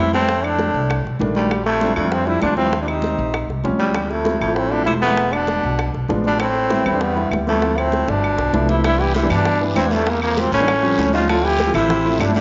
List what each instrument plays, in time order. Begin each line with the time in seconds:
Already playing: upright bass F2, baritone saxophone C3
0.00 trombone E4
0.13 baritone saxophone A2, grand piano G3 B3 C4 E4, trombone C4, high bongo, high conga
0.29 high bongo, high conga
0.44 baritone saxophone A2, trombone D4, high bongo, high conga, claves
0.58 high bongo, high conga
0.74 upright bass C2, high conga
0.90 high bongo, high conga, claves
1.05 upright bass B1, high bongo, high conga
1.19 upright bass A#1, grand piano D#3 G3 A3 D4, high bongo, low bongo, high conga
1.35 baritone saxophone D2, trombone G3, high bongo, high conga
1.50 high bongo, high conga, claves
1.65 baritone saxophone F2, trombone A3, high bongo, high conga
1.81 grand piano F3 G3 C4 D4, high bongo, high conga
1.96 baritone saxophone F2, upright bass F2, grand piano F3 G3 C4 D4, trombone A3, claves
2.04 grand piano F3 G3 C4 F4
2.12 baritone saxophone G2, trombone C4, high bongo, high conga
2.26 baritone saxophone C3, grand piano F3 G3 C4 D4, trombone E4, high bongo, high conga
2.42 upright bass D#2, baritone saxophone A#2, trombone D4, high bongo, low bongo, high conga, claves
2.57 baritone saxophone G2, grand piano F3 G3 C4 E4, trombone C4, high bongo, high conga
2.72 high bongo, high conga
2.82 baritone saxophone A#2, trombone D4
2.87 baritone saxophone C3, trombone D#4, high bongo, high conga, claves
3.02 high bongo, high conga
3.18 upright bass A#1, high conga
3.33 high bongo, high conga, claves
3.48 upright bass C2, high bongo, high conga
3.64 upright bass D2, grand piano F3 G3 C4 C#4, high bongo, low bongo, high conga
3.79 baritone saxophone E2, trombone G3, high bongo, high conga
3.95 high bongo, high conga, claves
4.09 baritone saxophone F2, trombone A3, high bongo, high conga
4.24 grand piano F3 A3 C4 E4, high bongo, high conga
4.40 upright bass A1, baritone saxophone F2, grand piano F3 A3 C4 E4, trombone A3, claves
4.47 grand piano F3 A3 C4 E4
4.56 baritone saxophone A2, trombone C4, high bongo
4.71 baritone saxophone B2, grand piano F3 A3 C4 E4, trombone D4, high bongo, high conga
4.86 upright bass E1, baritone saxophone C3, trombone E4, high bongo, low bongo, high conga, claves
5.01 baritone saxophone G#2, grand piano F3 A3 C4 E4, trombone B3, high bongo, high conga
5.17 high bongo, high conga
5.32 baritone saxophone B2, trombone D4, high bongo, high conga, claves
5.47 high bongo, high conga
5.63 upright bass B1, high conga
5.78 high bongo, high conga, claves
5.94 upright bass B1, high bongo, high conga
6.08 upright bass A1, grand piano F3 G#3 B3 D4, high bongo, low bongo, high conga
6.24 baritone saxophone B2, trombone D4, high bongo, high conga
6.39 baritone saxophone A2, trombone C4, high bongo, high conga, claves
6.55 high bongo, high conga
6.70 grand piano G3 B3 C4 E4, high bongo, high conga
6.86 upright bass E2, grand piano G3 B3 C4 E4, claves
6.94 grand piano G3 B3 C4 D4
7.01 baritone saxophone G2, trombone B3, high bongo, high conga
7.16 grand piano G3 B3 C4 E4, high bongo, high conga
7.31 upright bass D2, high bongo, low bongo, high conga, claves
7.47 baritone saxophone F2, grand piano G3 B3 C4 E4, trombone A3, high bongo, high conga
7.62 grand piano F3 A3 C4 E4, high bongo, high conga
7.77 baritone saxophone A2, trombone C4, high bongo, claves
7.92 high bongo, high conga
8.08 upright bass G1, baritone saxophone B2, trombone D4, high bongo, high conga
8.23 high conga, claves
8.38 upright bass B1, high bongo, high conga
8.53 upright bass C2, grand piano F3 A3 B3 E4, low bongo, high conga
8.69 baritone saxophone C3, trombone E4, low bongo, high conga
8.84 baritone saxophone C3, grand piano E3 G3 B3 D4, trombone E4, high bongo, high conga, long guiro, claves
8.99 baritone saxophone E3, trombone G4, high bongo, high conga
9.14 baritone saxophone C3, trombone E4, high bongo, high conga, short guiro
9.23 grand piano E3 G3 B3 D4
9.30 upright bass G2, baritone saxophone B2, trombone D4, low conga, short guiro, claves
9.45 high bongo, high conga, long guiro
9.61 grand piano E3 G3 B3 D4, high bongo, high conga
9.76 upright bass E2, baritone saxophone G2, trombone C4, high bongo, low bongo, high conga, short guiro, claves
9.91 baritone saxophone F2, trombone A3, high bongo, high conga, short guiro
10.06 baritone saxophone E2, trombone A#3, high bongo, high conga, long guiro
10.22 baritone saxophone F2, trombone A#3, high bongo, high conga, claves
10.37 baritone saxophone A#2, trombone C4, high bongo, high conga, short guiro
10.52 upright bass A1, baritone saxophone A2, trombone C#4, high conga, short guiro
10.60 grand piano E3 G3 A#3 D4
10.68 high bongo, high conga, long guiro, claves
10.83 grand piano F3 G3 C4 C#4, high bongo, high conga
10.98 upright bass D2, high bongo, low bongo, high conga, short guiro
11.13 baritone saxophone C#3, grand piano F3 G3 C4 D#4, trombone F4, high bongo, high conga, short guiro
11.28 baritone saxophone D3, grand piano F3 A3 C4 E4, trombone F4, high bongo, high conga, long guiro, claves
11.44 baritone saxophone E3, trombone G4, high bongo, high conga
11.59 high bongo, high conga, short guiro
11.67 grand piano F3 A3 C4 E4
11.74 upright bass A1, baritone saxophone C3, trombone E4, low conga, short guiro, claves
11.89 high bongo, high conga, low conga, long guiro
12.04 grand piano F3 A3 C4 E4, high bongo, high conga
12.19 upright bass G1, baritone saxophone A2, trombone D4, high bongo, low bongo, high conga, short guiro, claves
12.34 baritone saxophone B2, trombone D4, high bongo, high conga, short guiro